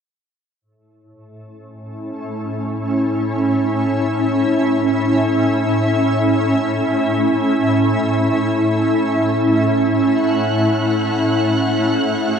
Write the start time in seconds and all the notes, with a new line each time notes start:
0.61 A2
1.08 A3
1.40 C#4
1.57 E4
2.29 E5
10.19 F#5 F#6
11.01 F#4
11.65 G#4